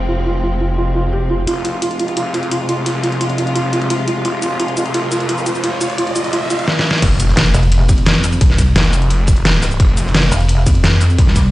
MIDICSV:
0, 0, Header, 1, 8, 480
1, 0, Start_track
1, 0, Key_signature, -4, "minor"
1, 0, Tempo, 346821
1, 120, Time_signature, 4, 2, 24, 8
1, 15933, End_track
2, 0, Start_track
2, 0, Title_t, "Felt piano"
2, 0, Program_c, 0, 0
2, 120, Note_on_c, 0, 65, 76
2, 223, Note_off_c, 0, 65, 0
2, 360, Note_on_c, 0, 65, 75
2, 463, Note_off_c, 0, 65, 0
2, 600, Note_on_c, 0, 65, 76
2, 662, Note_off_c, 0, 65, 0
2, 840, Note_on_c, 0, 65, 75
2, 943, Note_off_c, 0, 65, 0
2, 1080, Note_on_c, 0, 65, 82
2, 1182, Note_off_c, 0, 65, 0
2, 1320, Note_on_c, 0, 65, 74
2, 1474, Note_off_c, 0, 65, 0
2, 1559, Note_on_c, 0, 67, 100
2, 1662, Note_off_c, 0, 67, 0
2, 1800, Note_on_c, 0, 65, 76
2, 1954, Note_off_c, 0, 65, 0
2, 2040, Note_on_c, 0, 65, 78
2, 2143, Note_off_c, 0, 65, 0
2, 2280, Note_on_c, 0, 65, 75
2, 2342, Note_off_c, 0, 65, 0
2, 2520, Note_on_c, 0, 65, 75
2, 2623, Note_off_c, 0, 65, 0
2, 2761, Note_on_c, 0, 65, 76
2, 2863, Note_off_c, 0, 65, 0
2, 3000, Note_on_c, 0, 65, 82
2, 3062, Note_off_c, 0, 65, 0
2, 3240, Note_on_c, 0, 65, 72
2, 3343, Note_off_c, 0, 65, 0
2, 3480, Note_on_c, 0, 65, 78
2, 3582, Note_off_c, 0, 65, 0
2, 3720, Note_on_c, 0, 65, 78
2, 3782, Note_off_c, 0, 65, 0
2, 3960, Note_on_c, 0, 65, 79
2, 4063, Note_off_c, 0, 65, 0
2, 4200, Note_on_c, 0, 65, 74
2, 4303, Note_off_c, 0, 65, 0
2, 4439, Note_on_c, 0, 65, 79
2, 4501, Note_off_c, 0, 65, 0
2, 4680, Note_on_c, 0, 65, 77
2, 4783, Note_off_c, 0, 65, 0
2, 4920, Note_on_c, 0, 65, 83
2, 5022, Note_off_c, 0, 65, 0
2, 5160, Note_on_c, 0, 65, 73
2, 5222, Note_off_c, 0, 65, 0
2, 5400, Note_on_c, 0, 65, 76
2, 5503, Note_off_c, 0, 65, 0
2, 5640, Note_on_c, 0, 65, 80
2, 5742, Note_off_c, 0, 65, 0
2, 5880, Note_on_c, 0, 65, 81
2, 5942, Note_off_c, 0, 65, 0
2, 6120, Note_on_c, 0, 65, 74
2, 6223, Note_off_c, 0, 65, 0
2, 6360, Note_on_c, 0, 65, 77
2, 6463, Note_off_c, 0, 65, 0
2, 6600, Note_on_c, 0, 65, 77
2, 6662, Note_off_c, 0, 65, 0
2, 6840, Note_on_c, 0, 65, 84
2, 6943, Note_off_c, 0, 65, 0
2, 7080, Note_on_c, 0, 65, 76
2, 7183, Note_off_c, 0, 65, 0
2, 7320, Note_on_c, 0, 65, 78
2, 7382, Note_off_c, 0, 65, 0
2, 7560, Note_on_c, 0, 65, 79
2, 7663, Note_off_c, 0, 65, 0
2, 7800, Note_on_c, 0, 65, 83
2, 7903, Note_off_c, 0, 65, 0
2, 8040, Note_on_c, 0, 65, 77
2, 8102, Note_off_c, 0, 65, 0
2, 8280, Note_on_c, 0, 65, 79
2, 8382, Note_off_c, 0, 65, 0
2, 8519, Note_on_c, 0, 65, 78
2, 8622, Note_off_c, 0, 65, 0
2, 8760, Note_on_c, 0, 65, 88
2, 8822, Note_off_c, 0, 65, 0
2, 9000, Note_on_c, 0, 65, 75
2, 9154, Note_off_c, 0, 65, 0
2, 15933, End_track
3, 0, Start_track
3, 0, Title_t, "String section"
3, 0, Program_c, 1, 48
3, 0, Note_on_c, 1, 48, 74
3, 0, Note_on_c, 1, 53, 68
3, 0, Note_on_c, 1, 56, 68
3, 0, Note_on_c, 1, 60, 86
3, 1985, Note_off_c, 1, 48, 0
3, 1985, Note_off_c, 1, 53, 0
3, 1985, Note_off_c, 1, 56, 0
3, 2009, Note_off_c, 1, 60, 0
3, 2041, Note_on_c, 1, 48, 78
3, 2041, Note_on_c, 1, 56, 73
3, 2041, Note_on_c, 1, 65, 84
3, 2042, Note_on_c, 1, 53, 71
3, 9666, Note_off_c, 1, 48, 0
3, 9666, Note_off_c, 1, 53, 0
3, 9666, Note_off_c, 1, 56, 0
3, 9666, Note_off_c, 1, 65, 0
3, 15933, End_track
4, 0, Start_track
4, 0, Title_t, "Wobble bass"
4, 0, Program_c, 2, 39
4, 10441, Note_on_c, 2, 29, 98
4, 10902, Note_off_c, 2, 29, 0
4, 10920, Note_on_c, 2, 41, 97
4, 11621, Note_off_c, 2, 41, 0
4, 11640, Note_on_c, 2, 36, 96
4, 12101, Note_off_c, 2, 36, 0
4, 14280, Note_on_c, 2, 29, 97
4, 14741, Note_off_c, 2, 29, 0
4, 14761, Note_on_c, 2, 41, 97
4, 15461, Note_off_c, 2, 41, 0
4, 15480, Note_on_c, 2, 36, 102
4, 15933, Note_off_c, 2, 36, 0
4, 15933, End_track
5, 0, Start_track
5, 0, Title_t, "Detuned saw bass"
5, 0, Program_c, 3, 39
5, 0, Note_on_c, 3, 29, 86
5, 2017, Note_off_c, 3, 29, 0
5, 2040, Note_on_c, 3, 29, 95
5, 2741, Note_off_c, 3, 29, 0
5, 2761, Note_on_c, 3, 29, 97
5, 3222, Note_off_c, 3, 29, 0
5, 3240, Note_on_c, 3, 41, 98
5, 3941, Note_off_c, 3, 41, 0
5, 3960, Note_on_c, 3, 36, 97
5, 4421, Note_off_c, 3, 36, 0
5, 4439, Note_on_c, 3, 29, 97
5, 5861, Note_off_c, 3, 29, 0
5, 5880, Note_on_c, 3, 29, 97
5, 6581, Note_off_c, 3, 29, 0
5, 6600, Note_on_c, 3, 29, 96
5, 7061, Note_off_c, 3, 29, 0
5, 7080, Note_on_c, 3, 41, 94
5, 7781, Note_off_c, 3, 41, 0
5, 7800, Note_on_c, 3, 36, 98
5, 8262, Note_off_c, 3, 36, 0
5, 8280, Note_on_c, 3, 29, 97
5, 8741, Note_off_c, 3, 29, 0
5, 8760, Note_on_c, 3, 29, 99
5, 8981, Note_off_c, 3, 29, 0
5, 9000, Note_on_c, 3, 29, 96
5, 9241, Note_off_c, 3, 29, 0
5, 9721, Note_on_c, 3, 29, 97
5, 10422, Note_off_c, 3, 29, 0
5, 12122, Note_on_c, 3, 29, 99
5, 13542, Note_off_c, 3, 29, 0
5, 13561, Note_on_c, 3, 29, 98
5, 14262, Note_off_c, 3, 29, 0
5, 15933, End_track
6, 0, Start_track
6, 0, Title_t, "Impact"
6, 0, Program_c, 4, 103
6, 9720, Note_on_c, 4, 60, 77
6, 11640, Note_off_c, 4, 60, 0
6, 15933, End_track
7, 0, Start_track
7, 0, Title_t, "Riser"
7, 0, Program_c, 5, 103
7, 2040, Note_on_c, 5, 60, 78
7, 9241, Note_off_c, 5, 60, 0
7, 15933, End_track
8, 0, Start_track
8, 0, Title_t, "Drums"
8, 2040, Note_on_c, 9, 42, 94
8, 2179, Note_off_c, 9, 42, 0
8, 2280, Note_on_c, 9, 42, 69
8, 2418, Note_off_c, 9, 42, 0
8, 2520, Note_on_c, 9, 42, 96
8, 2641, Note_off_c, 9, 42, 0
8, 2641, Note_on_c, 9, 42, 36
8, 2761, Note_off_c, 9, 42, 0
8, 2761, Note_on_c, 9, 42, 66
8, 2880, Note_off_c, 9, 42, 0
8, 2880, Note_on_c, 9, 42, 39
8, 3000, Note_off_c, 9, 42, 0
8, 3000, Note_on_c, 9, 42, 92
8, 3139, Note_off_c, 9, 42, 0
8, 3241, Note_on_c, 9, 42, 69
8, 3361, Note_off_c, 9, 42, 0
8, 3361, Note_on_c, 9, 42, 38
8, 3480, Note_off_c, 9, 42, 0
8, 3480, Note_on_c, 9, 42, 97
8, 3619, Note_off_c, 9, 42, 0
8, 3721, Note_on_c, 9, 42, 69
8, 3859, Note_off_c, 9, 42, 0
8, 3960, Note_on_c, 9, 42, 90
8, 4099, Note_off_c, 9, 42, 0
8, 4200, Note_on_c, 9, 42, 67
8, 4321, Note_off_c, 9, 42, 0
8, 4321, Note_on_c, 9, 42, 37
8, 4441, Note_off_c, 9, 42, 0
8, 4441, Note_on_c, 9, 42, 93
8, 4561, Note_off_c, 9, 42, 0
8, 4561, Note_on_c, 9, 42, 37
8, 4681, Note_off_c, 9, 42, 0
8, 4681, Note_on_c, 9, 42, 66
8, 4801, Note_off_c, 9, 42, 0
8, 4801, Note_on_c, 9, 42, 37
8, 4921, Note_off_c, 9, 42, 0
8, 4921, Note_on_c, 9, 42, 89
8, 5059, Note_off_c, 9, 42, 0
8, 5161, Note_on_c, 9, 42, 69
8, 5281, Note_off_c, 9, 42, 0
8, 5281, Note_on_c, 9, 42, 37
8, 5401, Note_off_c, 9, 42, 0
8, 5401, Note_on_c, 9, 42, 97
8, 5539, Note_off_c, 9, 42, 0
8, 5641, Note_on_c, 9, 42, 67
8, 5779, Note_off_c, 9, 42, 0
8, 5881, Note_on_c, 9, 42, 90
8, 6019, Note_off_c, 9, 42, 0
8, 6121, Note_on_c, 9, 42, 65
8, 6121, Note_on_c, 9, 69, 57
8, 6260, Note_off_c, 9, 42, 0
8, 6260, Note_off_c, 9, 69, 0
8, 6361, Note_on_c, 9, 42, 92
8, 6481, Note_off_c, 9, 42, 0
8, 6481, Note_on_c, 9, 42, 35
8, 6600, Note_off_c, 9, 42, 0
8, 6600, Note_on_c, 9, 42, 64
8, 6600, Note_on_c, 9, 69, 57
8, 6721, Note_off_c, 9, 42, 0
8, 6721, Note_on_c, 9, 42, 37
8, 6739, Note_off_c, 9, 69, 0
8, 6841, Note_off_c, 9, 42, 0
8, 6841, Note_on_c, 9, 42, 87
8, 6979, Note_off_c, 9, 42, 0
8, 7081, Note_on_c, 9, 42, 67
8, 7081, Note_on_c, 9, 69, 59
8, 7202, Note_off_c, 9, 42, 0
8, 7202, Note_on_c, 9, 42, 36
8, 7219, Note_off_c, 9, 69, 0
8, 7322, Note_off_c, 9, 42, 0
8, 7322, Note_on_c, 9, 42, 93
8, 7441, Note_on_c, 9, 69, 26
8, 7460, Note_off_c, 9, 42, 0
8, 7561, Note_off_c, 9, 69, 0
8, 7561, Note_on_c, 9, 42, 65
8, 7561, Note_on_c, 9, 69, 56
8, 7681, Note_off_c, 9, 69, 0
8, 7681, Note_on_c, 9, 69, 28
8, 7699, Note_off_c, 9, 42, 0
8, 7801, Note_on_c, 9, 42, 91
8, 7820, Note_off_c, 9, 69, 0
8, 7939, Note_off_c, 9, 42, 0
8, 8041, Note_on_c, 9, 42, 65
8, 8041, Note_on_c, 9, 69, 61
8, 8161, Note_off_c, 9, 42, 0
8, 8161, Note_on_c, 9, 42, 36
8, 8179, Note_off_c, 9, 69, 0
8, 8280, Note_off_c, 9, 42, 0
8, 8280, Note_on_c, 9, 42, 89
8, 8401, Note_off_c, 9, 42, 0
8, 8401, Note_on_c, 9, 42, 35
8, 8520, Note_off_c, 9, 42, 0
8, 8520, Note_on_c, 9, 42, 65
8, 8520, Note_on_c, 9, 69, 59
8, 8640, Note_off_c, 9, 42, 0
8, 8640, Note_on_c, 9, 42, 36
8, 8659, Note_off_c, 9, 69, 0
8, 8760, Note_off_c, 9, 42, 0
8, 8760, Note_on_c, 9, 42, 86
8, 8899, Note_off_c, 9, 42, 0
8, 9001, Note_on_c, 9, 42, 65
8, 9001, Note_on_c, 9, 69, 58
8, 9120, Note_off_c, 9, 42, 0
8, 9120, Note_on_c, 9, 42, 36
8, 9139, Note_off_c, 9, 69, 0
8, 9240, Note_on_c, 9, 38, 70
8, 9259, Note_off_c, 9, 42, 0
8, 9378, Note_off_c, 9, 38, 0
8, 9400, Note_on_c, 9, 38, 83
8, 9539, Note_off_c, 9, 38, 0
8, 9561, Note_on_c, 9, 38, 98
8, 9699, Note_off_c, 9, 38, 0
8, 9721, Note_on_c, 9, 36, 120
8, 9721, Note_on_c, 9, 42, 100
8, 9721, Note_on_c, 9, 49, 107
8, 9724, Note_on_c, 9, 51, 83
8, 9839, Note_off_c, 9, 51, 0
8, 9839, Note_on_c, 9, 51, 47
8, 9859, Note_off_c, 9, 36, 0
8, 9859, Note_off_c, 9, 42, 0
8, 9859, Note_off_c, 9, 49, 0
8, 9961, Note_off_c, 9, 51, 0
8, 9961, Note_on_c, 9, 42, 73
8, 9961, Note_on_c, 9, 51, 66
8, 9961, Note_on_c, 9, 69, 60
8, 10079, Note_on_c, 9, 38, 44
8, 10099, Note_off_c, 9, 42, 0
8, 10099, Note_off_c, 9, 69, 0
8, 10100, Note_off_c, 9, 51, 0
8, 10186, Note_off_c, 9, 38, 0
8, 10186, Note_on_c, 9, 38, 125
8, 10194, Note_on_c, 9, 46, 86
8, 10201, Note_off_c, 9, 38, 0
8, 10201, Note_on_c, 9, 38, 124
8, 10201, Note_on_c, 9, 42, 97
8, 10321, Note_off_c, 9, 42, 0
8, 10321, Note_on_c, 9, 42, 38
8, 10333, Note_off_c, 9, 46, 0
8, 10339, Note_off_c, 9, 38, 0
8, 10440, Note_off_c, 9, 42, 0
8, 10440, Note_on_c, 9, 37, 49
8, 10440, Note_on_c, 9, 42, 70
8, 10440, Note_on_c, 9, 69, 61
8, 10448, Note_on_c, 9, 51, 73
8, 10553, Note_off_c, 9, 51, 0
8, 10553, Note_on_c, 9, 51, 43
8, 10561, Note_off_c, 9, 42, 0
8, 10561, Note_on_c, 9, 42, 40
8, 10579, Note_off_c, 9, 37, 0
8, 10579, Note_off_c, 9, 69, 0
8, 10680, Note_off_c, 9, 42, 0
8, 10680, Note_on_c, 9, 42, 94
8, 10684, Note_off_c, 9, 51, 0
8, 10684, Note_on_c, 9, 51, 96
8, 10800, Note_on_c, 9, 37, 35
8, 10819, Note_off_c, 9, 42, 0
8, 10822, Note_off_c, 9, 51, 0
8, 10911, Note_on_c, 9, 51, 74
8, 10921, Note_on_c, 9, 36, 106
8, 10921, Note_on_c, 9, 42, 71
8, 10921, Note_on_c, 9, 69, 62
8, 10939, Note_off_c, 9, 37, 0
8, 11040, Note_off_c, 9, 51, 0
8, 11040, Note_on_c, 9, 51, 39
8, 11041, Note_off_c, 9, 42, 0
8, 11041, Note_on_c, 9, 42, 39
8, 11059, Note_off_c, 9, 36, 0
8, 11059, Note_off_c, 9, 69, 0
8, 11147, Note_off_c, 9, 51, 0
8, 11147, Note_on_c, 9, 51, 60
8, 11161, Note_off_c, 9, 42, 0
8, 11161, Note_on_c, 9, 38, 123
8, 11161, Note_on_c, 9, 42, 98
8, 11278, Note_off_c, 9, 51, 0
8, 11278, Note_on_c, 9, 51, 80
8, 11299, Note_off_c, 9, 38, 0
8, 11299, Note_off_c, 9, 42, 0
8, 11401, Note_on_c, 9, 42, 70
8, 11401, Note_on_c, 9, 69, 59
8, 11402, Note_off_c, 9, 51, 0
8, 11402, Note_on_c, 9, 51, 38
8, 11519, Note_off_c, 9, 51, 0
8, 11519, Note_on_c, 9, 51, 62
8, 11521, Note_off_c, 9, 69, 0
8, 11521, Note_on_c, 9, 69, 29
8, 11540, Note_off_c, 9, 42, 0
8, 11640, Note_off_c, 9, 51, 0
8, 11640, Note_on_c, 9, 51, 81
8, 11641, Note_on_c, 9, 36, 126
8, 11641, Note_on_c, 9, 42, 95
8, 11660, Note_off_c, 9, 69, 0
8, 11761, Note_on_c, 9, 38, 41
8, 11763, Note_off_c, 9, 51, 0
8, 11763, Note_on_c, 9, 51, 45
8, 11779, Note_off_c, 9, 36, 0
8, 11779, Note_off_c, 9, 42, 0
8, 11881, Note_on_c, 9, 36, 65
8, 11881, Note_on_c, 9, 42, 71
8, 11881, Note_on_c, 9, 69, 60
8, 11885, Note_off_c, 9, 51, 0
8, 11885, Note_on_c, 9, 51, 59
8, 11900, Note_off_c, 9, 38, 0
8, 12019, Note_off_c, 9, 36, 0
8, 12020, Note_off_c, 9, 42, 0
8, 12020, Note_off_c, 9, 69, 0
8, 12023, Note_off_c, 9, 51, 0
8, 12121, Note_on_c, 9, 38, 126
8, 12121, Note_on_c, 9, 42, 94
8, 12123, Note_off_c, 9, 38, 0
8, 12123, Note_on_c, 9, 38, 123
8, 12124, Note_on_c, 9, 51, 87
8, 12241, Note_off_c, 9, 42, 0
8, 12241, Note_on_c, 9, 42, 37
8, 12261, Note_off_c, 9, 38, 0
8, 12263, Note_off_c, 9, 51, 0
8, 12359, Note_on_c, 9, 51, 72
8, 12361, Note_off_c, 9, 42, 0
8, 12361, Note_on_c, 9, 42, 68
8, 12361, Note_on_c, 9, 69, 59
8, 12481, Note_off_c, 9, 42, 0
8, 12481, Note_on_c, 9, 42, 38
8, 12498, Note_off_c, 9, 51, 0
8, 12500, Note_off_c, 9, 69, 0
8, 12595, Note_on_c, 9, 51, 86
8, 12601, Note_off_c, 9, 42, 0
8, 12601, Note_on_c, 9, 42, 90
8, 12734, Note_off_c, 9, 51, 0
8, 12740, Note_off_c, 9, 42, 0
8, 12828, Note_on_c, 9, 51, 85
8, 12841, Note_on_c, 9, 36, 112
8, 12842, Note_on_c, 9, 42, 70
8, 12842, Note_on_c, 9, 69, 60
8, 12961, Note_off_c, 9, 42, 0
8, 12961, Note_on_c, 9, 42, 37
8, 12966, Note_off_c, 9, 51, 0
8, 12979, Note_off_c, 9, 36, 0
8, 12980, Note_off_c, 9, 69, 0
8, 13081, Note_off_c, 9, 42, 0
8, 13081, Note_on_c, 9, 38, 127
8, 13081, Note_on_c, 9, 42, 96
8, 13092, Note_on_c, 9, 51, 63
8, 13201, Note_on_c, 9, 37, 37
8, 13219, Note_off_c, 9, 38, 0
8, 13219, Note_off_c, 9, 42, 0
8, 13231, Note_off_c, 9, 51, 0
8, 13315, Note_on_c, 9, 38, 102
8, 13321, Note_off_c, 9, 37, 0
8, 13321, Note_on_c, 9, 37, 37
8, 13321, Note_on_c, 9, 42, 67
8, 13321, Note_on_c, 9, 69, 58
8, 13327, Note_on_c, 9, 51, 73
8, 13441, Note_off_c, 9, 69, 0
8, 13441, Note_on_c, 9, 69, 27
8, 13453, Note_off_c, 9, 38, 0
8, 13460, Note_off_c, 9, 37, 0
8, 13460, Note_off_c, 9, 42, 0
8, 13466, Note_off_c, 9, 51, 0
8, 13561, Note_on_c, 9, 36, 127
8, 13561, Note_on_c, 9, 42, 92
8, 13565, Note_on_c, 9, 51, 83
8, 13580, Note_off_c, 9, 69, 0
8, 13679, Note_off_c, 9, 51, 0
8, 13679, Note_on_c, 9, 51, 49
8, 13699, Note_off_c, 9, 36, 0
8, 13700, Note_off_c, 9, 42, 0
8, 13797, Note_off_c, 9, 51, 0
8, 13797, Note_on_c, 9, 51, 73
8, 13802, Note_on_c, 9, 42, 67
8, 13802, Note_on_c, 9, 69, 59
8, 13925, Note_on_c, 9, 38, 44
8, 13935, Note_off_c, 9, 51, 0
8, 13940, Note_off_c, 9, 42, 0
8, 13940, Note_off_c, 9, 69, 0
8, 14041, Note_off_c, 9, 38, 0
8, 14041, Note_on_c, 9, 38, 127
8, 14041, Note_on_c, 9, 42, 92
8, 14043, Note_on_c, 9, 46, 84
8, 14045, Note_off_c, 9, 38, 0
8, 14045, Note_on_c, 9, 38, 122
8, 14161, Note_off_c, 9, 42, 0
8, 14161, Note_on_c, 9, 42, 37
8, 14182, Note_off_c, 9, 46, 0
8, 14183, Note_off_c, 9, 38, 0
8, 14281, Note_off_c, 9, 42, 0
8, 14281, Note_on_c, 9, 37, 50
8, 14281, Note_on_c, 9, 42, 66
8, 14281, Note_on_c, 9, 69, 56
8, 14285, Note_on_c, 9, 51, 72
8, 14401, Note_off_c, 9, 42, 0
8, 14401, Note_on_c, 9, 42, 36
8, 14413, Note_off_c, 9, 51, 0
8, 14413, Note_on_c, 9, 51, 47
8, 14419, Note_off_c, 9, 37, 0
8, 14419, Note_off_c, 9, 69, 0
8, 14509, Note_off_c, 9, 51, 0
8, 14509, Note_on_c, 9, 51, 87
8, 14521, Note_off_c, 9, 42, 0
8, 14521, Note_on_c, 9, 42, 87
8, 14640, Note_on_c, 9, 37, 33
8, 14647, Note_off_c, 9, 51, 0
8, 14659, Note_off_c, 9, 42, 0
8, 14760, Note_on_c, 9, 36, 116
8, 14760, Note_on_c, 9, 42, 67
8, 14760, Note_on_c, 9, 69, 58
8, 14776, Note_on_c, 9, 51, 68
8, 14779, Note_off_c, 9, 37, 0
8, 14880, Note_off_c, 9, 42, 0
8, 14880, Note_on_c, 9, 42, 37
8, 14899, Note_off_c, 9, 36, 0
8, 14899, Note_off_c, 9, 69, 0
8, 14914, Note_off_c, 9, 51, 0
8, 14995, Note_on_c, 9, 38, 112
8, 15000, Note_off_c, 9, 38, 0
8, 15000, Note_off_c, 9, 42, 0
8, 15000, Note_on_c, 9, 38, 127
8, 15000, Note_on_c, 9, 42, 94
8, 15006, Note_on_c, 9, 51, 86
8, 15138, Note_off_c, 9, 38, 0
8, 15138, Note_off_c, 9, 42, 0
8, 15145, Note_off_c, 9, 51, 0
8, 15240, Note_on_c, 9, 42, 66
8, 15240, Note_on_c, 9, 69, 56
8, 15245, Note_on_c, 9, 51, 67
8, 15360, Note_off_c, 9, 69, 0
8, 15360, Note_on_c, 9, 69, 27
8, 15378, Note_off_c, 9, 42, 0
8, 15383, Note_off_c, 9, 51, 0
8, 15480, Note_on_c, 9, 36, 127
8, 15480, Note_on_c, 9, 42, 89
8, 15487, Note_on_c, 9, 51, 81
8, 15498, Note_off_c, 9, 69, 0
8, 15600, Note_on_c, 9, 38, 40
8, 15618, Note_off_c, 9, 36, 0
8, 15618, Note_off_c, 9, 42, 0
8, 15626, Note_off_c, 9, 51, 0
8, 15720, Note_on_c, 9, 36, 64
8, 15720, Note_on_c, 9, 42, 66
8, 15720, Note_on_c, 9, 69, 58
8, 15724, Note_on_c, 9, 51, 64
8, 15739, Note_off_c, 9, 38, 0
8, 15858, Note_off_c, 9, 36, 0
8, 15858, Note_off_c, 9, 42, 0
8, 15858, Note_off_c, 9, 69, 0
8, 15862, Note_off_c, 9, 51, 0
8, 15933, End_track
0, 0, End_of_file